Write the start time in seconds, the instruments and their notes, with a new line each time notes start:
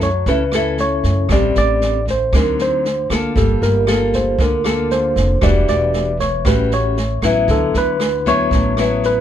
Already playing: upright bass F#2, nylon-string guitar F#3
0.00 tine electric piano C#5, kick, snare
0.26 upright bass C#2, nylon-string guitar C#3 C#4 E4 A4, tine electric piano B4, kick, snare
0.52 nylon-string guitar C#4 E4 A4, cross-stick, snare
0.77 tine electric piano C#5, snare
1.03 upright bass F#2, kick, snare
1.29 upright bass A1, nylon-string guitar A2 G3 C4 D4, tine electric piano D5, kick, cross-stick, snare
1.55 upright bass A1, tine electric piano D5, snare
1.81 snare
2.07 tine electric piano C5, kick, snare
2.33 upright bass D2, nylon-string guitar D3 F#3 C4 D#4, tine electric piano A#4, kick, cross-stick, snare
2.58 tine electric piano C5, snare
2.85 snare
3.10 upright bass D2, nylon-string guitar A#3 F4 A4, kick, cross-stick, snare
3.36 upright bass G1, nylon-string guitar G3, tine electric piano A4, kick, snare
3.62 upright bass G1, tine electric piano A#4, snare
3.87 nylon-string guitar A#3 F4 A4, cross-stick, snare
4.13 tine electric piano C5, kick, snare
4.39 upright bass D2, nylon-string guitar D3, tine electric piano A#4, kick, snare
4.64 nylon-string guitar A#3 F4 A4, cross-stick, snare
4.90 tine electric piano C5, snare
5.16 upright bass F1, kick, snare
5.41 upright bass E1, nylon-string guitar E3 G3 D4 F#4, tine electric piano D5, kick, cross-stick, snare
5.67 upright bass E1, tine electric piano D5, snare
5.93 snare
6.19 tine electric piano C#5, kick, snare
6.45 upright bass A1, nylon-string guitar A2 G3 C#4 F#4, tine electric piano B4, kick, cross-stick, snare
6.71 tine electric piano C#5, snare
6.97 snare
7.22 upright bass A1, nylon-string guitar F#3 B3 E4, kick, cross-stick, snare
7.48 upright bass D2, nylon-string guitar D3, tine electric piano A4, kick, snare
7.74 upright bass D2, tine electric piano B4, snare
8.00 cross-stick, snare
8.25 nylon-string guitar F#3 B3 E4, tine electric piano C#5, kick, snare
8.51 upright bass A1, nylon-string guitar A2, kick, snare
8.77 nylon-string guitar F#3 B3 E4, cross-stick, snare
9.03 tine electric piano B4, snare